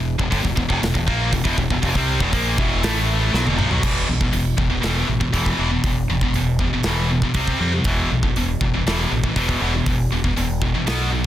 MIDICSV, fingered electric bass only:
0, 0, Header, 1, 2, 480
1, 0, Start_track
1, 0, Tempo, 502513
1, 1744, Time_signature, 4, 2, 24, 8
1, 10756, End_track
2, 0, Start_track
2, 0, Title_t, "Fingered electric bass"
2, 0, Program_c, 0, 33
2, 0, Note_on_c, 0, 28, 74
2, 169, Note_off_c, 0, 28, 0
2, 191, Note_on_c, 0, 28, 79
2, 300, Note_off_c, 0, 28, 0
2, 308, Note_on_c, 0, 31, 92
2, 419, Note_off_c, 0, 31, 0
2, 429, Note_on_c, 0, 28, 73
2, 539, Note_off_c, 0, 28, 0
2, 548, Note_on_c, 0, 28, 77
2, 658, Note_off_c, 0, 28, 0
2, 669, Note_on_c, 0, 29, 91
2, 779, Note_off_c, 0, 29, 0
2, 790, Note_on_c, 0, 28, 81
2, 899, Note_off_c, 0, 28, 0
2, 911, Note_on_c, 0, 28, 90
2, 1020, Note_off_c, 0, 28, 0
2, 1030, Note_on_c, 0, 34, 105
2, 1251, Note_off_c, 0, 34, 0
2, 1271, Note_on_c, 0, 28, 85
2, 1380, Note_off_c, 0, 28, 0
2, 1389, Note_on_c, 0, 28, 76
2, 1499, Note_off_c, 0, 28, 0
2, 1508, Note_on_c, 0, 28, 76
2, 1618, Note_off_c, 0, 28, 0
2, 1630, Note_on_c, 0, 28, 83
2, 1739, Note_off_c, 0, 28, 0
2, 1749, Note_on_c, 0, 29, 93
2, 1859, Note_off_c, 0, 29, 0
2, 1863, Note_on_c, 0, 36, 93
2, 2087, Note_off_c, 0, 36, 0
2, 2106, Note_on_c, 0, 28, 83
2, 2217, Note_off_c, 0, 28, 0
2, 2226, Note_on_c, 0, 34, 90
2, 2448, Note_off_c, 0, 34, 0
2, 2470, Note_on_c, 0, 28, 90
2, 2690, Note_off_c, 0, 28, 0
2, 2702, Note_on_c, 0, 33, 101
2, 3149, Note_off_c, 0, 33, 0
2, 3190, Note_on_c, 0, 35, 93
2, 3298, Note_off_c, 0, 35, 0
2, 3305, Note_on_c, 0, 28, 84
2, 3416, Note_off_c, 0, 28, 0
2, 3427, Note_on_c, 0, 34, 85
2, 3536, Note_off_c, 0, 34, 0
2, 3541, Note_on_c, 0, 35, 101
2, 3653, Note_off_c, 0, 35, 0
2, 3663, Note_on_c, 0, 28, 78
2, 3836, Note_off_c, 0, 28, 0
2, 3910, Note_on_c, 0, 35, 88
2, 4081, Note_off_c, 0, 35, 0
2, 4148, Note_on_c, 0, 28, 84
2, 4319, Note_off_c, 0, 28, 0
2, 4377, Note_on_c, 0, 28, 85
2, 4552, Note_off_c, 0, 28, 0
2, 4618, Note_on_c, 0, 28, 87
2, 4793, Note_off_c, 0, 28, 0
2, 4862, Note_on_c, 0, 33, 83
2, 5036, Note_off_c, 0, 33, 0
2, 5098, Note_on_c, 0, 28, 94
2, 5273, Note_off_c, 0, 28, 0
2, 5336, Note_on_c, 0, 28, 80
2, 5511, Note_off_c, 0, 28, 0
2, 5578, Note_on_c, 0, 28, 91
2, 5753, Note_off_c, 0, 28, 0
2, 5813, Note_on_c, 0, 28, 96
2, 5990, Note_off_c, 0, 28, 0
2, 6050, Note_on_c, 0, 28, 91
2, 6401, Note_off_c, 0, 28, 0
2, 6540, Note_on_c, 0, 28, 93
2, 6888, Note_off_c, 0, 28, 0
2, 7017, Note_on_c, 0, 36, 90
2, 7193, Note_off_c, 0, 36, 0
2, 7261, Note_on_c, 0, 41, 87
2, 7435, Note_off_c, 0, 41, 0
2, 7498, Note_on_c, 0, 28, 86
2, 7673, Note_off_c, 0, 28, 0
2, 7754, Note_on_c, 0, 35, 91
2, 7923, Note_off_c, 0, 35, 0
2, 7989, Note_on_c, 0, 28, 81
2, 8161, Note_off_c, 0, 28, 0
2, 8227, Note_on_c, 0, 28, 84
2, 8399, Note_off_c, 0, 28, 0
2, 8465, Note_on_c, 0, 28, 86
2, 8638, Note_off_c, 0, 28, 0
2, 8712, Note_on_c, 0, 33, 86
2, 8883, Note_off_c, 0, 33, 0
2, 8948, Note_on_c, 0, 28, 79
2, 9120, Note_off_c, 0, 28, 0
2, 9184, Note_on_c, 0, 28, 81
2, 9357, Note_off_c, 0, 28, 0
2, 9427, Note_on_c, 0, 28, 85
2, 9599, Note_off_c, 0, 28, 0
2, 9666, Note_on_c, 0, 28, 87
2, 9839, Note_off_c, 0, 28, 0
2, 9907, Note_on_c, 0, 28, 85
2, 10253, Note_off_c, 0, 28, 0
2, 10383, Note_on_c, 0, 35, 93
2, 10731, Note_off_c, 0, 35, 0
2, 10756, End_track
0, 0, End_of_file